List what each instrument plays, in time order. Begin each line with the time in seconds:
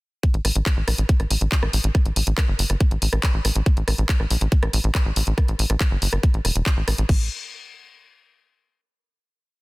0.23 kick, closed hi-hat
0.34 analog synth bass A1, closed hi-hat
0.45 analog synth bass A1, cross-stick, open hi-hat
0.56 analog synth bass A1, closed hi-hat
0.66 kick, clap, closed hi-hat
0.77 analog synth bass A1
0.88 analog synth bass A#1, cross-stick, open hi-hat
0.98 analog synth bass A1, closed hi-hat
1.09 kick, closed hi-hat
1.20 analog synth bass A1, cross-stick, closed hi-hat
1.30 analog synth bass A1, open hi-hat
1.41 analog synth bass A1, closed hi-hat
1.52 kick, clap, closed hi-hat
1.63 analog synth bass A1, cross-stick
1.73 analog synth bass A1, open hi-hat
1.84 analog synth bass A1, closed hi-hat
1.95 kick, cross-stick, closed hi-hat
2.05 analog synth bass A1, closed hi-hat
2.16 analog synth bass A1, open hi-hat
2.27 analog synth bass A1, closed hi-hat
2.38 kick, cross-stick, clap, closed hi-hat
2.48 analog synth bass G1
2.59 analog synth bass G1, open hi-hat
2.70 analog synth bass G1, cross-stick, closed hi-hat
2.81 kick, closed hi-hat
2.91 analog synth bass A1, closed hi-hat
3.02 analog synth bass A1, open hi-hat
3.13 analog synth bass A1, cross-stick, closed hi-hat
3.23 kick, clap, closed hi-hat
3.34 analog synth bass A1
3.45 analog synth bass A1, cross-stick, open hi-hat
3.56 analog synth bass A1, closed hi-hat
3.66 kick, closed hi-hat
3.77 analog synth bass A1, closed hi-hat
3.88 analog synth bass A1, cross-stick, open hi-hat
3.98 analog synth bass A1, closed hi-hat
4.09 kick, clap, closed hi-hat
4.20 analog synth bass A1, cross-stick
4.30 analog synth bass A#1, open hi-hat
4.41 analog synth bass A1, closed hi-hat
4.52 kick, closed hi-hat
4.63 analog synth bass A1, cross-stick, closed hi-hat
4.73 analog synth bass A1, open hi-hat
4.84 analog synth bass A1, closed hi-hat
4.95 kick, cross-stick, clap, closed hi-hat
5.06 analog synth bass A1
5.16 analog synth bass A1, open hi-hat
5.27 analog synth bass A1, closed hi-hat
5.38 kick, cross-stick, closed hi-hat
5.48 analog synth bass A1, closed hi-hat
5.59 analog synth bass A1, open hi-hat
5.70 analog synth bass A1, cross-stick, closed hi-hat
5.81 kick, clap, closed hi-hat
5.91 analog synth bass G1
6.02 analog synth bass G1, open hi-hat
6.13 analog synth bass G1, cross-stick, closed hi-hat
6.23 kick, closed hi-hat
6.34 analog synth bass A1, closed hi-hat
6.45 analog synth bass E1, cross-stick, open hi-hat
6.56 analog synth bass E1, closed hi-hat
6.66 kick, clap, closed hi-hat
6.77 analog synth bass A1
6.88 analog synth bass A1, cross-stick, open hi-hat
6.98 analog synth bass A1, closed hi-hat
7.09 analog synth bass A1, kick, crash